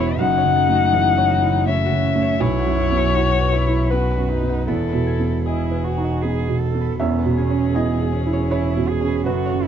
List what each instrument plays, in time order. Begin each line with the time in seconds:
Already playing: double bass E1, felt piano E2 B2 B3 E4 G#4, harp B3 C#4 G#4 C#5 G#5, cello E4, violin C#5
0.00 harp B4
0.18 double bass F#1, felt piano F#2, cello D#4, harp F#4, violin F#5
0.37 harp C#5
0.44 felt piano C#3
0.56 harp A4
0.69 felt piano A3
0.75 harp F#4
0.93 felt piano E3, harp A4
1.18 felt piano C#5
1.31 harp F#4
1.42 felt piano E4
1.66 felt piano A3, cello C#4, harp C#5, violin E5
1.85 harp F#4
1.90 felt piano C#3
2.15 felt piano A3
2.22 harp C#5
2.40 felt piano B1, double bass B1, cello E4, harp B4, violin C#5
2.59 harp F#5
2.66 felt piano F#2
2.92 felt piano B3
2.97 harp B4
3.15 felt piano E4, cello F#4
3.41 felt piano B4
3.52 cello E4, harp B4
3.67 felt piano E4
3.73 harp B5
3.90 felt piano B3, cello F#4, violin B4, harp F#5
4.11 harp B4
4.17 felt piano F#2
4.29 cello D#4
4.43 felt piano B3
4.49 harp F#5
4.68 double bass E1, felt piano E2, harp B3, cello E4, violin A4
4.88 harp B4
4.93 felt piano B2
5.07 harp G#5
5.19 felt piano B3
5.45 cello E4, violin G#4, felt piano D#5
5.71 felt piano B4
5.84 cello F#4
5.98 felt piano D#4
6.04 harp D#5
6.22 felt piano B3, cello G#4, harp B4
6.48 felt piano B2
6.60 cello A4
6.74 felt piano B3
6.81 harp B4
7.00 double bass E1, felt piano E2 E5, cello B3, harp C#4, violin G#4
7.19 harp B4
7.25 felt piano B2
7.38 cello C#4, harp G#4
7.50 felt piano C#4
7.75 cello B3, felt piano E4 D#5, harp G#4
8.01 felt piano G#4
8.13 cello C#4
8.26 felt piano E4
8.33 harp C#5
8.51 felt piano C#4 C#5, cello E4, harp B4
8.77 felt piano B2
8.89 cello G#4
9.01 felt piano C#4
9.08 harp B4
9.26 double bass F#1, felt piano F#2 B4, harp F#4, cello F#4, violin A4
9.45 harp C#5
9.52 felt piano C#3
9.64 cello E4, harp A4